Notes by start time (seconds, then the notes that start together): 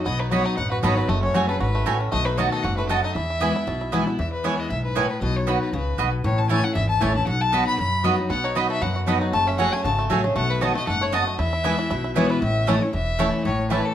Already playing: F#4 A4
0.05 B1 B2 B3 D#5
0.19 D#4 B4
0.31 F#3 B3 D#4 F#4 C#5 D#5 B5
0.45 D#4 D#5
0.57 A1 F#2 B3 F#5
0.71 F#4 B4
0.83 G#1 F#3 B3 D#4 F#4 A4 C#5 D#5 B5
0.97 F#4 B4
1.09 F#1 F#2 A3 D#5
1.23 C#4 C#5
1.34 F#1 F#3 A3 C#4 F#4 G#4 C#5 G#5
1.48 C#4 G#4 A4 B4
1.60 G#1 G#2 F#4 B4
1.75 A3
1.86 A1 A2 A3 F#4 A4 C#5 G#5
2.00 C#4
2.12 B1 B2 A3 D#5
2.25 D#4 B4
2.37 D#3 A3 B3 F#4 C#5 D#5 A5
2.51 A4 D#5
2.63 F#1 G#2 F#4 F#5
2.77 A3 B4
2.89 F#2 B3 F#4 A4 D#5 A5
3.03 D#4 D#5
3.15 E2 E4 E5
3.30 E4
3.40 E3 G#3 B3 E4 B4 G#5
3.55 B3 E4
3.67 B1 B2 E4
3.81 E4
3.92 E3 G#3 B3 E4 B4 G#5
4.06 B3 E4
4.19 E2 E5
4.33 B4
4.44 E3 G#3 B3 E4 B4 C#5 G#5
4.59 D#5
4.70 B1 G#2 E5
4.84 B4
4.95 A2 B3 E4 B4 C#5 G#5
5.10 B4
5.21 B1 B2 D#5
5.36 C#5
5.47 F#3 B3 D#4 F#4 D#5 B5
5.61 B4
5.73 C#2 C#3 B4
5.98 B1 B2 B3 F#4 D#5 B5
6.24 A1 A2 C#5
6.38 A5
6.49 E3 A3 C#4 E4 C#5 G#5 A5
6.64 C#4 E4 F#5
6.75 G#1 E2 E5
6.89 A5
7.00 A1 E3 A3 C#4 E4 C#5 G#5 A5
7.15 C#4 E4 A5
7.27 B1 B2 F#5
7.41 A5
7.52 F#3 B3 D#4 F#4 D#5 B5
7.67 B5
7.78 F#2 B5
8.04 F#3 B3 D#4 F#4 D#5 B5
8.18 D#4 F#4
8.30 B1 B2 B3 F#5
8.44 D#4 C#5
8.55 F#3 B3 D#4 F#4 D#5 B5
8.70 A4 E5
8.81 F#2 B3 F#5
8.96 F#4
9.06 F#3 B3 D#4 F#4 A4 D#5 B5
9.21 D#4
9.33 F#1 F#2 A3 A5
9.47 C#4 E5
9.58 F#3 A3 C#4 F#4 G#4 C#5 F#5 G#5
9.72 A3 C#4 G#4 G#5
9.84 G#1 C#3 F#4 A5
9.99 A3
10.10 A1 F#3 A3 C#4 F#4 G#4 A4 C#5 G#5
10.24 A3 C#4 G#4
10.36 B1 B2 A3 F#5
10.50 B4
10.61 D#3 A3 B3 F#4 A4 C#5 D#5 A5
10.75 A3 B3 F#4 D#5
10.87 F#1 G#2 A4 F#5
11.01 A3 C#5
11.12 F#2 B3 F#4 D#5 A5
11.27 A3
11.39 E2 E4 E5
11.53 E4
11.64 E3 G#3 B3 E4 B4 G#5
11.79 E4
11.90 B1 B2 E4
12.04 E4
12.15 E3 G#3 B3 E4 B4 C#5 G#5
12.30 E4 B4
12.42 A1 A2 E5
12.67 E3 A3 C#4 E4 C#5 D#5 A5
12.81 C#4 E4 C#5
12.93 E1 E2 E5
13.19 E3 A3 C#4 E4 C#5 A5
13.45 A1 A2 C#5
13.70 E3 A3 C#4 E4 B4 C#5 A5
13.85 A4